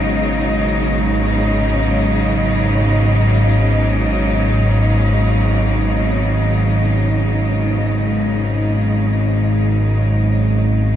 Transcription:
Already playing: G#1 G#2 B2 C#3 F#3 D#4 D#5

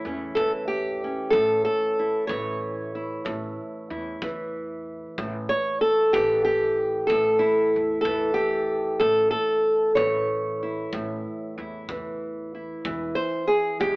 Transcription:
Already playing: A2 E3 E4
0.05 E2 C#4
0.35 E2 E3 A4, kick
0.68 G4
1.04 C#4
1.30 A1 A4, kick
1.35 A2
1.65 A4
1.99 E4
2.27 A1 E3 C#5, kick
2.95 E4
3.25 A1 A2, kick
3.90 E2 E4
4.22 E2 E3, kick
5.18 A1 A2, kick
5.49 C#5
5.81 A4
6.13 A1 E3 G4, kick
6.45 G4
7.07 A1 A4, kick
7.11 A2
7.39 E4
7.76 E2
8.01 A4
8.05 E2 E3, kick
8.34 G4
9.00 A1 A2 A4, kick
9.31 A4
9.95 A1 E3 C#5, kick
10.63 E4
10.93 A1 A2, kick
11.58 E2 E4
11.89 E2 E3, kick
12.55 E4
12.85 E1 E3, kick
13.15 C5
13.47 G#4
13.80 E1 G#3 G4, kick

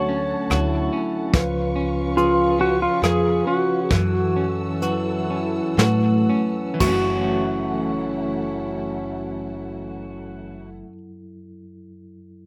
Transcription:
Already playing: D2 D3 F#3 A3 D4 F#4 A4 C#5 F#5 A5
0.09 C#4
0.50 D2 F#3 D4 E4 F#4 C#5, cross-stick, closed hi-hat
0.93 C#4
1.33 C#2 C#3 F3 C#4 F4 B4 F5 C#6, kick, closed hi-hat
1.76 C#4
2.17 F3 C#4 F4 G#4 B4, closed hi-hat
2.59 C#4 F#4
2.82 F4
3.02 F2 F3 C#4 G#4 B4, cross-stick, closed hi-hat
3.47 C#4 F#4
3.83 G#4
3.89 F#1 F#2 E3 F#3 E4 F#4 A4 F#5 E6, kick, closed hi-hat
4.36 C#4
4.81 F#3 E4 F#4 B4, closed hi-hat
5.30 C#4
5.77 A2 F#3 E4 F#4 B4, snare, closed hi-hat
6.29 C#4
6.74 E3
6.78 F#1 F#2 F#3 A3 C#4 E4 F#4 A4 F#5, kick, crash
6.83 C#4 A4
6.93 F#4

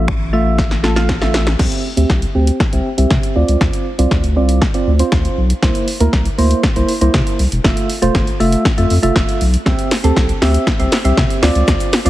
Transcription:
Already playing: A1
0.08 finger snap, kick
0.33 A3 F4 E5
0.58 kick, snare
0.71 snare
0.83 A3 F4 A4, snare
0.96 A3 F4 F5, snare
1.09 kick, snare
1.21 A3 F4 E5, snare
1.34 snare
1.47 snare
1.59 C2 C4 G4 E5, kick, snare, crash
1.72 closed hi-hat
1.97 D2 C4 G4 E5, closed hi-hat
2.10 C2, kick, snare
2.22 closed hi-hat
2.35 D2 C4 G4 G5
2.47 closed hi-hat
2.60 kick, snare
2.73 C2 C4 G4 E5, closed hi-hat
2.98 C2 C4 G4 E5, closed hi-hat
3.10 C3, kick, snare
3.23 closed hi-hat
3.35 D2 C4 F4 D5
3.48 C#2, closed hi-hat
3.61 D2, kick, snare
3.73 closed hi-hat
3.98 C2 C4 F4 D5, closed hi-hat
4.11 D2, kick, snare
4.24 closed hi-hat
4.36 C2 C4 F4 D5
4.49 closed hi-hat
4.62 kick, snare
4.74 C4 F4 D5, closed hi-hat
4.87 D2
4.99 C4 F4 C5, closed hi-hat
5.12 D2, kick, snare
5.25 closed hi-hat
5.37 B1
5.50 closed hi-hat
5.62 C2 A#3 E4 C5, kick, snare
5.75 closed hi-hat
5.88 open hi-hat
6.00 D2 A#3 E4 A#4, closed hi-hat
6.13 C2, kick, snare
6.25 closed hi-hat
6.38 D2 A#3 E4 C5, open hi-hat
6.51 closed hi-hat
6.63 kick, snare
6.76 C2 A#3 E4 C5, closed hi-hat
6.89 open hi-hat
7.01 C2 A#3 E4 C5, closed hi-hat
7.14 C3, kick, snare
7.27 closed hi-hat
7.39 C2, open hi-hat
7.52 E1, closed hi-hat
7.64 F1 A3 F4 E5, kick, snare
7.77 closed hi-hat
7.90 open hi-hat
8.02 E1 A3 F4 C5, closed hi-hat
8.15 G1, kick, snare
8.27 closed hi-hat
8.40 F1 A3 F4 E5, open hi-hat
8.52 closed hi-hat
8.65 kick, snare
8.77 F2 A3 F4 E5, closed hi-hat
8.90 F2, open hi-hat
9.03 F1 A3 F4 E5, closed hi-hat
9.16 F1, kick, snare
9.29 closed hi-hat
9.41 B1, open hi-hat
9.54 closed hi-hat
9.66 C2 C4 G4 E5, kick, snare
9.79 closed hi-hat
9.91 snare, open hi-hat
10.04 D2 C4 G4 A4, closed hi-hat
10.16 C2, kick, snare
10.29 closed hi-hat
10.42 D2 C4 G4 E5, snare, open hi-hat
10.54 closed hi-hat
10.67 kick, snare
10.79 C2 C4 G4 E5, closed hi-hat
10.92 snare, open hi-hat
11.05 C2 C4 G4 E5, closed hi-hat
11.17 C3, kick, snare
11.30 closed hi-hat
11.42 D2 C4 F4 D5, snare, open hi-hat
11.55 C#2, closed hi-hat
11.68 D2, kick, snare, shaker
11.80 closed hi-hat, shaker
11.93 snare, open hi-hat, shaker
12.05 C2 C4 F4 D5, closed hi-hat, shaker

